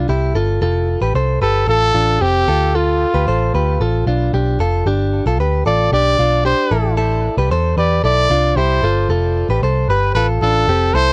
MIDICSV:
0, 0, Header, 1, 4, 480
1, 0, Start_track
1, 0, Tempo, 529568
1, 566, Time_signature, 4, 2, 24, 8
1, 10086, End_track
2, 0, Start_track
2, 0, Title_t, "Trumpet"
2, 0, Program_c, 0, 56
2, 1287, Note_on_c, 0, 69, 87
2, 1510, Note_off_c, 0, 69, 0
2, 1529, Note_on_c, 0, 69, 106
2, 2008, Note_on_c, 0, 67, 102
2, 2022, Note_off_c, 0, 69, 0
2, 2495, Note_on_c, 0, 65, 84
2, 2509, Note_off_c, 0, 67, 0
2, 3452, Note_off_c, 0, 65, 0
2, 5134, Note_on_c, 0, 74, 87
2, 5355, Note_off_c, 0, 74, 0
2, 5377, Note_on_c, 0, 74, 102
2, 5820, Note_off_c, 0, 74, 0
2, 5853, Note_on_c, 0, 72, 80
2, 6297, Note_off_c, 0, 72, 0
2, 7055, Note_on_c, 0, 74, 85
2, 7275, Note_off_c, 0, 74, 0
2, 7294, Note_on_c, 0, 74, 105
2, 7761, Note_on_c, 0, 72, 86
2, 7775, Note_off_c, 0, 74, 0
2, 8244, Note_off_c, 0, 72, 0
2, 8963, Note_on_c, 0, 71, 81
2, 9187, Note_off_c, 0, 71, 0
2, 9198, Note_on_c, 0, 71, 85
2, 9308, Note_off_c, 0, 71, 0
2, 9445, Note_on_c, 0, 69, 91
2, 9916, Note_on_c, 0, 72, 100
2, 9930, Note_off_c, 0, 69, 0
2, 10086, Note_off_c, 0, 72, 0
2, 10086, End_track
3, 0, Start_track
3, 0, Title_t, "Clean electric guitar"
3, 0, Program_c, 1, 27
3, 82, Note_on_c, 1, 67, 74
3, 87, Note_on_c, 1, 64, 59
3, 317, Note_off_c, 1, 67, 0
3, 321, Note_on_c, 1, 69, 82
3, 326, Note_off_c, 1, 64, 0
3, 330, Note_on_c, 1, 65, 59
3, 551, Note_off_c, 1, 69, 0
3, 559, Note_off_c, 1, 65, 0
3, 562, Note_on_c, 1, 69, 91
3, 570, Note_on_c, 1, 65, 71
3, 903, Note_off_c, 1, 69, 0
3, 907, Note_off_c, 1, 65, 0
3, 921, Note_on_c, 1, 71, 77
3, 928, Note_on_c, 1, 67, 62
3, 1043, Note_off_c, 1, 71, 0
3, 1046, Note_on_c, 1, 72, 81
3, 1047, Note_off_c, 1, 67, 0
3, 1051, Note_on_c, 1, 69, 60
3, 1281, Note_off_c, 1, 72, 0
3, 1285, Note_on_c, 1, 71, 76
3, 1288, Note_off_c, 1, 69, 0
3, 1291, Note_on_c, 1, 67, 59
3, 1517, Note_off_c, 1, 71, 0
3, 1520, Note_on_c, 1, 69, 62
3, 1526, Note_off_c, 1, 67, 0
3, 1530, Note_on_c, 1, 65, 49
3, 1751, Note_off_c, 1, 65, 0
3, 1762, Note_on_c, 1, 65, 68
3, 1764, Note_off_c, 1, 69, 0
3, 1769, Note_on_c, 1, 62, 50
3, 2001, Note_off_c, 1, 65, 0
3, 2005, Note_on_c, 1, 67, 78
3, 2009, Note_off_c, 1, 62, 0
3, 2013, Note_on_c, 1, 60, 63
3, 2246, Note_off_c, 1, 67, 0
3, 2250, Note_off_c, 1, 60, 0
3, 2250, Note_on_c, 1, 69, 77
3, 2259, Note_on_c, 1, 65, 64
3, 2482, Note_off_c, 1, 69, 0
3, 2490, Note_off_c, 1, 65, 0
3, 2493, Note_on_c, 1, 69, 100
3, 2501, Note_on_c, 1, 65, 74
3, 2829, Note_off_c, 1, 69, 0
3, 2834, Note_off_c, 1, 65, 0
3, 2849, Note_on_c, 1, 71, 78
3, 2856, Note_on_c, 1, 67, 59
3, 2968, Note_off_c, 1, 71, 0
3, 2972, Note_off_c, 1, 67, 0
3, 2972, Note_on_c, 1, 72, 78
3, 2979, Note_on_c, 1, 69, 65
3, 3210, Note_off_c, 1, 72, 0
3, 3214, Note_off_c, 1, 69, 0
3, 3215, Note_on_c, 1, 71, 76
3, 3223, Note_on_c, 1, 67, 57
3, 3449, Note_off_c, 1, 67, 0
3, 3452, Note_off_c, 1, 71, 0
3, 3453, Note_on_c, 1, 69, 70
3, 3460, Note_on_c, 1, 65, 54
3, 3681, Note_off_c, 1, 65, 0
3, 3688, Note_off_c, 1, 69, 0
3, 3691, Note_on_c, 1, 65, 68
3, 3698, Note_on_c, 1, 62, 53
3, 3929, Note_off_c, 1, 65, 0
3, 3930, Note_off_c, 1, 62, 0
3, 3933, Note_on_c, 1, 67, 77
3, 3941, Note_on_c, 1, 62, 54
3, 4171, Note_off_c, 1, 67, 0
3, 4172, Note_on_c, 1, 69, 78
3, 4175, Note_off_c, 1, 62, 0
3, 4178, Note_on_c, 1, 65, 57
3, 4408, Note_off_c, 1, 65, 0
3, 4411, Note_off_c, 1, 69, 0
3, 4411, Note_on_c, 1, 67, 87
3, 4417, Note_on_c, 1, 62, 71
3, 4749, Note_off_c, 1, 67, 0
3, 4752, Note_off_c, 1, 62, 0
3, 4776, Note_on_c, 1, 69, 81
3, 4783, Note_on_c, 1, 65, 63
3, 4892, Note_off_c, 1, 69, 0
3, 4896, Note_off_c, 1, 65, 0
3, 4896, Note_on_c, 1, 71, 84
3, 4902, Note_on_c, 1, 67, 61
3, 5127, Note_off_c, 1, 71, 0
3, 5131, Note_on_c, 1, 69, 72
3, 5134, Note_off_c, 1, 67, 0
3, 5138, Note_on_c, 1, 65, 60
3, 5370, Note_off_c, 1, 65, 0
3, 5370, Note_off_c, 1, 69, 0
3, 5373, Note_on_c, 1, 67, 70
3, 5379, Note_on_c, 1, 62, 50
3, 5610, Note_off_c, 1, 62, 0
3, 5610, Note_off_c, 1, 67, 0
3, 5613, Note_on_c, 1, 65, 64
3, 5621, Note_on_c, 1, 62, 50
3, 5842, Note_off_c, 1, 65, 0
3, 5843, Note_off_c, 1, 62, 0
3, 5846, Note_on_c, 1, 67, 77
3, 5854, Note_on_c, 1, 62, 65
3, 6084, Note_on_c, 1, 69, 79
3, 6088, Note_off_c, 1, 67, 0
3, 6092, Note_off_c, 1, 62, 0
3, 6092, Note_on_c, 1, 64, 66
3, 6310, Note_off_c, 1, 69, 0
3, 6319, Note_off_c, 1, 64, 0
3, 6321, Note_on_c, 1, 69, 94
3, 6330, Note_on_c, 1, 64, 70
3, 6663, Note_off_c, 1, 69, 0
3, 6668, Note_off_c, 1, 64, 0
3, 6690, Note_on_c, 1, 71, 76
3, 6698, Note_on_c, 1, 67, 57
3, 6807, Note_off_c, 1, 71, 0
3, 6811, Note_on_c, 1, 72, 89
3, 6813, Note_off_c, 1, 67, 0
3, 6820, Note_on_c, 1, 69, 68
3, 7046, Note_off_c, 1, 72, 0
3, 7049, Note_on_c, 1, 71, 71
3, 7051, Note_off_c, 1, 69, 0
3, 7055, Note_on_c, 1, 67, 54
3, 7282, Note_off_c, 1, 67, 0
3, 7286, Note_on_c, 1, 69, 68
3, 7289, Note_off_c, 1, 71, 0
3, 7293, Note_on_c, 1, 64, 52
3, 7525, Note_off_c, 1, 69, 0
3, 7529, Note_on_c, 1, 65, 74
3, 7531, Note_off_c, 1, 64, 0
3, 7536, Note_on_c, 1, 62, 49
3, 7765, Note_off_c, 1, 65, 0
3, 7769, Note_on_c, 1, 67, 76
3, 7772, Note_off_c, 1, 62, 0
3, 7777, Note_on_c, 1, 64, 61
3, 8004, Note_off_c, 1, 67, 0
3, 8008, Note_on_c, 1, 69, 81
3, 8012, Note_off_c, 1, 64, 0
3, 8015, Note_on_c, 1, 65, 65
3, 8236, Note_off_c, 1, 69, 0
3, 8246, Note_off_c, 1, 65, 0
3, 8247, Note_on_c, 1, 69, 91
3, 8257, Note_on_c, 1, 65, 70
3, 8585, Note_off_c, 1, 69, 0
3, 8591, Note_off_c, 1, 65, 0
3, 8610, Note_on_c, 1, 71, 77
3, 8616, Note_on_c, 1, 67, 65
3, 8727, Note_off_c, 1, 71, 0
3, 8730, Note_on_c, 1, 72, 81
3, 8732, Note_off_c, 1, 67, 0
3, 8739, Note_on_c, 1, 69, 61
3, 8968, Note_off_c, 1, 72, 0
3, 8973, Note_off_c, 1, 69, 0
3, 8974, Note_on_c, 1, 71, 75
3, 8979, Note_on_c, 1, 67, 59
3, 9207, Note_off_c, 1, 71, 0
3, 9210, Note_on_c, 1, 69, 70
3, 9211, Note_off_c, 1, 67, 0
3, 9214, Note_on_c, 1, 65, 55
3, 9438, Note_off_c, 1, 65, 0
3, 9448, Note_off_c, 1, 69, 0
3, 9449, Note_on_c, 1, 65, 73
3, 9456, Note_on_c, 1, 62, 51
3, 9685, Note_off_c, 1, 65, 0
3, 9689, Note_on_c, 1, 67, 78
3, 9691, Note_off_c, 1, 62, 0
3, 9696, Note_on_c, 1, 60, 59
3, 9925, Note_on_c, 1, 69, 81
3, 9927, Note_off_c, 1, 67, 0
3, 9930, Note_off_c, 1, 60, 0
3, 9932, Note_on_c, 1, 64, 63
3, 10086, Note_off_c, 1, 64, 0
3, 10086, Note_off_c, 1, 69, 0
3, 10086, End_track
4, 0, Start_track
4, 0, Title_t, "Picked electric bass"
4, 0, Program_c, 2, 34
4, 79, Note_on_c, 2, 36, 90
4, 286, Note_off_c, 2, 36, 0
4, 315, Note_on_c, 2, 31, 80
4, 524, Note_off_c, 2, 31, 0
4, 557, Note_on_c, 2, 29, 98
4, 867, Note_off_c, 2, 29, 0
4, 916, Note_on_c, 2, 33, 70
4, 1023, Note_off_c, 2, 33, 0
4, 1038, Note_on_c, 2, 36, 91
4, 1246, Note_off_c, 2, 36, 0
4, 1282, Note_on_c, 2, 31, 86
4, 1488, Note_off_c, 2, 31, 0
4, 1518, Note_on_c, 2, 33, 90
4, 1726, Note_off_c, 2, 33, 0
4, 1764, Note_on_c, 2, 33, 85
4, 1969, Note_off_c, 2, 33, 0
4, 2001, Note_on_c, 2, 29, 89
4, 2208, Note_off_c, 2, 29, 0
4, 2246, Note_on_c, 2, 38, 91
4, 2757, Note_off_c, 2, 38, 0
4, 2848, Note_on_c, 2, 38, 76
4, 2950, Note_off_c, 2, 38, 0
4, 2969, Note_on_c, 2, 33, 78
4, 3173, Note_off_c, 2, 33, 0
4, 3208, Note_on_c, 2, 38, 80
4, 3413, Note_off_c, 2, 38, 0
4, 3445, Note_on_c, 2, 33, 83
4, 3651, Note_off_c, 2, 33, 0
4, 3685, Note_on_c, 2, 35, 80
4, 3891, Note_off_c, 2, 35, 0
4, 3928, Note_on_c, 2, 35, 89
4, 4133, Note_off_c, 2, 35, 0
4, 4165, Note_on_c, 2, 29, 89
4, 4371, Note_off_c, 2, 29, 0
4, 4404, Note_on_c, 2, 31, 97
4, 4712, Note_off_c, 2, 31, 0
4, 4768, Note_on_c, 2, 35, 89
4, 4890, Note_off_c, 2, 35, 0
4, 4890, Note_on_c, 2, 38, 79
4, 5094, Note_off_c, 2, 38, 0
4, 5128, Note_on_c, 2, 33, 82
4, 5333, Note_off_c, 2, 33, 0
4, 5365, Note_on_c, 2, 35, 89
4, 5571, Note_off_c, 2, 35, 0
4, 5608, Note_on_c, 2, 35, 80
4, 5915, Note_off_c, 2, 35, 0
4, 6084, Note_on_c, 2, 33, 99
4, 6596, Note_off_c, 2, 33, 0
4, 6683, Note_on_c, 2, 36, 84
4, 6788, Note_off_c, 2, 36, 0
4, 6806, Note_on_c, 2, 40, 92
4, 7011, Note_off_c, 2, 40, 0
4, 7040, Note_on_c, 2, 40, 84
4, 7248, Note_off_c, 2, 40, 0
4, 7283, Note_on_c, 2, 35, 80
4, 7489, Note_off_c, 2, 35, 0
4, 7523, Note_on_c, 2, 36, 78
4, 7729, Note_off_c, 2, 36, 0
4, 7760, Note_on_c, 2, 36, 100
4, 7967, Note_off_c, 2, 36, 0
4, 8000, Note_on_c, 2, 31, 84
4, 8207, Note_off_c, 2, 31, 0
4, 8238, Note_on_c, 2, 29, 99
4, 8548, Note_off_c, 2, 29, 0
4, 8600, Note_on_c, 2, 33, 83
4, 8705, Note_off_c, 2, 33, 0
4, 8723, Note_on_c, 2, 36, 79
4, 8928, Note_off_c, 2, 36, 0
4, 8959, Note_on_c, 2, 31, 86
4, 9166, Note_off_c, 2, 31, 0
4, 9198, Note_on_c, 2, 33, 87
4, 9405, Note_off_c, 2, 33, 0
4, 9441, Note_on_c, 2, 33, 79
4, 9646, Note_off_c, 2, 33, 0
4, 9676, Note_on_c, 2, 29, 94
4, 9884, Note_off_c, 2, 29, 0
4, 9916, Note_on_c, 2, 36, 96
4, 10086, Note_off_c, 2, 36, 0
4, 10086, End_track
0, 0, End_of_file